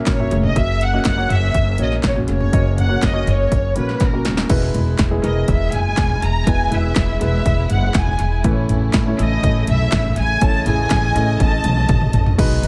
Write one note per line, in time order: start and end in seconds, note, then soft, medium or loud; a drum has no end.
0.00 0.32 C#3 medium
0.00 0.19 A#3 medium
0.00 0.20 C#4 medium
0.00 0.20 F#4 medium
0.00 4.14 A#4 medium
0.00 1.18 C#5 medium
0.00 0.20 E5 medium
0.06 0.27 A#1 medium
0.06 0.42 C#5 medium
0.06 kick loud
0.06 snare loud
0.06 clap medium
0.06 closed hi-hat medium
0.19 0.51 A#3 medium
0.19 0.51 C#4 medium
0.19 0.51 F#4 medium
0.19 0.52 E5 medium
0.19 floor tom medium
0.31 0.52 F1 medium
0.31 1.01 C#3 medium
0.31 closed hi-hat medium
0.43 0.57 D#5 medium
0.43 floor tom medium
0.55 0.96 F#1 medium
0.55 0.88 A#3 medium
0.55 0.88 C#4 medium
0.55 0.88 F#4 medium
0.55 0.88 E5 medium
0.55 0.82 E5 loud
0.55 kick loud
0.55 closed hi-hat medium
0.81 1.06 F#5 medium
0.81 closed hi-hat medium
0.93 1.14 A#3 medium
0.93 1.15 C#4 medium
0.93 1.15 F#4 medium
0.93 1.15 D#5 medium
1.05 1.26 F#1 medium
1.05 1.29 F#5 loud
1.05 kick medium
1.05 snare medium
1.05 clap medium
1.05 closed hi-hat medium
1.17 1.71 A#3 medium
1.17 1.71 C#4 medium
1.17 1.71 F#4 medium
1.17 1.71 C#5 medium
1.30 1.50 F#1 medium
1.30 1.81 E5 medium
1.30 closed hi-hat medium
1.30 floor tom medium
1.54 1.75 F#1 medium
1.54 kick medium
1.54 closed hi-hat medium
1.78 1.99 A#1 medium
1.78 2.11 A#3 medium
1.78 2.11 C#4 medium
1.78 2.11 F#4 medium
1.78 2.11 C#5 medium
1.78 closed hi-hat medium
1.82 1.93 D#5 medium
1.92 snare soft
2.03 2.24 A#1 medium
2.03 2.17 C#5 medium
2.03 kick medium
2.03 snare medium
2.03 clap medium
2.03 closed hi-hat medium
2.15 2.48 A#3 medium
2.15 2.48 C#4 medium
2.15 2.48 F#4 medium
2.15 2.48 C#5 medium
2.15 floor tom medium
2.28 2.49 F1 medium
2.28 2.98 C#3 medium
2.28 closed hi-hat medium
2.32 2.76 C#5 medium
2.40 floor tom medium
2.52 2.94 F#1 medium
2.52 2.85 A#3 medium
2.52 2.85 C#4 medium
2.52 2.85 F#4 medium
2.52 2.85 D#5 medium
2.52 kick loud
2.52 closed hi-hat medium
2.78 3.04 F#5 medium
2.78 closed hi-hat medium
2.78 floor tom medium
2.89 3.11 A#3 medium
2.89 3.11 C#4 medium
2.89 3.11 F#4 medium
2.89 3.11 C#5 medium
3.02 3.23 F#1 medium
3.02 3.29 D#5 medium
3.02 kick loud
3.02 snare medium
3.02 clap medium
3.02 closed hi-hat medium
3.13 3.68 A#3 medium
3.13 3.67 C#4 medium
3.13 3.67 F#4 medium
3.13 3.68 C#5 medium
3.27 3.47 F#1 medium
3.27 3.78 C#5 medium
3.27 closed hi-hat medium
3.27 floor tom medium
3.52 3.72 F#1 medium
3.52 kick medium
3.52 closed hi-hat medium
3.76 3.97 A#1 medium
3.76 4.08 A#3 medium
3.76 4.08 C#4 medium
3.76 4.08 F#4 medium
3.76 4.01 B4 medium
3.76 4.08 C#5 medium
3.76 closed hi-hat medium
3.89 snare soft
4.00 4.21 A#1 medium
4.00 4.39 A#4 medium
4.00 kick loud
4.00 snare soft
4.00 closed hi-hat medium
4.13 4.45 A#3 medium
4.13 4.45 C#4 medium
4.13 4.45 F#4 soft
4.13 4.46 A#4 medium
4.25 4.46 D#1 medium
4.25 snare medium
4.25 closed hi-hat medium
4.37 snare medium
4.37 closed hi-hat soft
4.49 4.70 E1 medium
4.49 5.20 B2 medium
4.49 8.41 B2 medium
4.49 5.03 G#3 medium
4.49 8.41 G#3 medium
4.49 5.03 B3 medium
4.49 5.04 E4 medium
4.49 10.38 E4 medium
4.49 5.04 B4 medium
4.49 kick loud
4.49 closed hi-hat medium
4.49 crash medium
4.74 4.95 E1 medium
4.74 closed hi-hat medium
4.74 floor tom medium
4.98 5.19 E1 medium
4.98 kick loud
4.98 snare medium
4.98 clap medium
4.98 closed hi-hat medium
5.11 5.21 G#3 medium
5.11 5.21 B3 medium
5.11 5.22 E4 medium
5.11 5.22 G#4 medium
5.22 5.44 E1 medium
5.22 6.09 G#3 medium
5.22 6.09 B3 medium
5.22 6.09 E4 medium
5.22 6.09 A#4 medium
5.22 5.48 D#5 medium
5.22 closed hi-hat medium
5.48 5.69 E1 medium
5.48 5.72 E5 medium
5.48 kick medium
5.48 closed hi-hat medium
5.72 5.94 F#1 medium
5.72 6.23 G#5 medium
5.72 closed hi-hat medium
5.72 floor tom medium
5.97 6.18 E1 medium
5.97 kick loud
5.97 snare loud
5.97 clap medium
5.97 closed hi-hat medium
6.10 floor tom medium
6.22 6.43 E1 medium
6.22 6.48 A#5 medium
6.22 closed hi-hat medium
6.46 6.67 E1 medium
6.46 7.17 B2 medium
6.46 6.68 G#3 medium
6.46 6.68 B3 medium
6.46 6.68 E4 medium
6.46 6.68 B4 medium
6.46 6.72 G#5 loud
6.46 kick loud
6.46 closed hi-hat medium
6.70 6.92 E1 medium
6.70 7.14 G#3 medium
6.70 7.14 B3 medium
6.70 7.14 E4 medium
6.70 7.14 B4 medium
6.70 7.22 E5 medium
6.70 closed hi-hat medium
6.70 floor tom medium
6.95 7.17 E1 medium
6.95 kick loud
6.95 snare loud
6.95 clap medium
6.95 closed hi-hat medium
7.21 7.42 E1 medium
7.21 8.07 G#3 medium
7.21 8.07 B3 medium
7.21 8.07 E4 medium
7.21 8.07 B4 medium
7.21 7.68 E5 medium
7.21 closed hi-hat medium
7.46 7.66 E1 medium
7.46 kick medium
7.46 closed hi-hat medium
7.70 7.91 F#1 medium
7.70 7.96 F#5 medium
7.70 closed hi-hat medium
7.70 floor tom medium
7.94 8.15 E1 medium
7.94 8.33 G#5 medium
7.94 kick loud
7.94 snare loud
7.94 clap medium
7.94 closed hi-hat medium
8.07 floor tom medium
8.19 8.40 E1 medium
8.19 closed hi-hat medium
8.44 8.65 A1 medium
8.44 9.15 A2 medium
8.44 12.35 C#3 medium
8.44 9.15 E3 medium
8.44 8.98 A3 medium
8.44 12.35 A3 medium
8.44 8.98 C#4 medium
8.44 8.98 E4 medium
8.44 8.51 B4 medium
8.44 kick loud
8.44 closed hi-hat medium
8.51 9.01 C#5 medium
8.69 8.89 A1 medium
8.69 closed hi-hat medium
8.69 floor tom medium
8.93 9.14 A1 medium
8.93 kick loud
8.93 snare loud
8.93 clap medium
8.93 closed hi-hat medium
9.06 9.17 A3 medium
9.06 9.17 C#4 medium
9.06 9.17 E4 medium
9.06 9.17 C#5 medium
9.18 9.39 A1 medium
9.18 10.04 A3 medium
9.18 10.04 C#4 medium
9.18 10.04 E4 medium
9.18 10.04 A4 medium
9.18 9.65 D#5 medium
9.18 closed hi-hat medium
9.43 9.63 A1 medium
9.43 kick medium
9.43 closed hi-hat medium
9.67 9.88 B1 medium
9.67 10.14 E5 medium
9.67 closed hi-hat medium
9.67 floor tom medium
9.92 10.13 A1 loud
9.92 kick loud
9.92 snare loud
9.92 clap medium
9.92 closed hi-hat medium
10.04 floor tom medium
10.16 10.37 A1 medium
10.16 10.42 G#5 loud
10.16 closed hi-hat medium
10.41 10.62 A1 medium
10.41 11.11 A2 medium
10.41 11.12 E3 medium
10.41 10.63 A3 medium
10.41 10.63 C#4 medium
10.41 10.63 E4 medium
10.41 10.63 C#5 medium
10.41 12.37 D#5 medium
10.41 10.67 A5 loud
10.41 kick loud
10.41 closed hi-hat medium
10.66 10.86 A1 medium
10.66 11.09 A3 medium
10.66 11.09 C#4 medium
10.66 11.09 E4 medium
10.66 11.09 G#4 medium
10.66 11.36 G#5 loud
10.66 closed hi-hat medium
10.66 floor tom medium
10.90 11.11 A1 loud
10.90 kick loud
10.90 snare loud
10.90 clap medium
10.90 closed hi-hat medium
11.15 11.36 A1 loud
11.15 12.01 A3 medium
11.15 12.01 C#4 medium
11.15 12.01 E4 medium
11.15 12.01 D#5 medium
11.15 closed hi-hat medium
11.40 11.60 A1 medium
11.40 12.15 A5 medium
11.40 kick loud
11.40 closed hi-hat medium
11.40 high tom medium
11.64 11.85 B1 medium
11.64 closed hi-hat medium
11.64 mid tom medium
11.77 mid tom medium
11.89 12.09 A1 medium
11.89 kick loud
11.89 closed hi-hat medium
11.89 mid tom medium
12.01 mid tom medium
12.13 12.34 A1 medium
12.13 closed hi-hat medium
12.13 floor tom medium
12.26 floor tom medium
12.38 12.59 B1 loud
12.38 12.68 B2 medium
12.38 12.68 G#3 medium
12.38 12.68 B3 medium
12.38 12.68 D#4 medium
12.38 12.68 F#4 medium
12.38 12.68 B4 medium
12.38 kick loud
12.38 closed hi-hat medium
12.38 crash loud
12.63 12.68 B1 medium
12.63 closed hi-hat medium